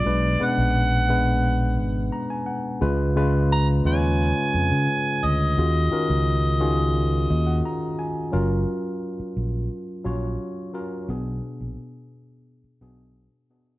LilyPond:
<<
  \new Staff \with { instrumentName = "Harmonica" } { \time 4/4 \key fis \major \tempo 4 = 87 d''8 fis''2 r4. | r4 ais''8 gis''2 dis''8~ | dis''2. r4 | r1 |
r1 | }
  \new Staff \with { instrumentName = "Tine electric piano" } { \time 4/4 \key fis \major << { r2. ais''16 gis''16 fis''8 | r1 | r2 r8 dis''16 fis''16 ais''8 gis''8 | r1 |
r1 | } \\ { <b, gis d' b'>8 <gis b cis' d' b'>8. r16 <gis b d' b'>4. r4 | <cis gis eis' b'>8 <cis gis eis' b'>8. r16 <cis gis eis' b' cis''>4. r4 | <dis cis' eis' fis' gis'>8 <dis cis' eis' fis' ais'>8. r16 <dis cis' eis' fis' gis'>4. r4 | <fis cis' eis' ais'>4. r4 <fis cis' eis' cis''>8. r16 <fis cis' eis' ais'>8 |
<b, b d' gis'>4. r4 <b, b d' gis'>8. r16 <b, b d' gis'>8 | } >> }
  \new Staff \with { instrumentName = "Fingered electric bass" } { \clef bass \time 4/4 \key fis \major b,,8 r16 ais,,4.~ ais,,16 gis,,8 r4 | cis,4. dis,8. r16 eis,16 cis16 r8 d,8 | dis,8 r16 cis,4.~ cis,16 dis,8 r4 | fis,,8 r4 ais,,8 r8 ais,,8 r4 |
b,,8 r16 ais,,16 r4. b,,8. r8. | }
>>